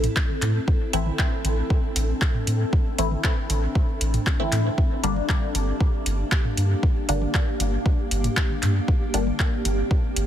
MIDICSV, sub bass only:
0, 0, Header, 1, 2, 480
1, 0, Start_track
1, 0, Tempo, 512821
1, 634, Time_signature, 4, 2, 24, 8
1, 9608, End_track
2, 0, Start_track
2, 0, Title_t, "Sub bass"
2, 0, Program_c, 0, 38
2, 394, Note_on_c, 0, 45, 83
2, 557, Note_off_c, 0, 45, 0
2, 874, Note_on_c, 0, 33, 102
2, 1037, Note_off_c, 0, 33, 0
2, 1354, Note_on_c, 0, 33, 90
2, 1517, Note_off_c, 0, 33, 0
2, 1834, Note_on_c, 0, 33, 99
2, 1997, Note_off_c, 0, 33, 0
2, 2314, Note_on_c, 0, 45, 82
2, 2477, Note_off_c, 0, 45, 0
2, 2794, Note_on_c, 0, 33, 104
2, 2957, Note_off_c, 0, 33, 0
2, 3274, Note_on_c, 0, 33, 88
2, 3437, Note_off_c, 0, 33, 0
2, 3754, Note_on_c, 0, 33, 100
2, 3917, Note_off_c, 0, 33, 0
2, 4234, Note_on_c, 0, 45, 84
2, 4397, Note_off_c, 0, 45, 0
2, 4714, Note_on_c, 0, 31, 100
2, 4877, Note_off_c, 0, 31, 0
2, 5194, Note_on_c, 0, 31, 92
2, 5357, Note_off_c, 0, 31, 0
2, 5674, Note_on_c, 0, 31, 98
2, 5837, Note_off_c, 0, 31, 0
2, 6154, Note_on_c, 0, 43, 82
2, 6317, Note_off_c, 0, 43, 0
2, 6634, Note_on_c, 0, 31, 103
2, 6797, Note_off_c, 0, 31, 0
2, 7114, Note_on_c, 0, 31, 90
2, 7277, Note_off_c, 0, 31, 0
2, 7594, Note_on_c, 0, 31, 103
2, 7757, Note_off_c, 0, 31, 0
2, 8074, Note_on_c, 0, 43, 84
2, 8237, Note_off_c, 0, 43, 0
2, 8554, Note_on_c, 0, 31, 101
2, 8717, Note_off_c, 0, 31, 0
2, 9034, Note_on_c, 0, 31, 91
2, 9197, Note_off_c, 0, 31, 0
2, 9514, Note_on_c, 0, 31, 101
2, 9608, Note_off_c, 0, 31, 0
2, 9608, End_track
0, 0, End_of_file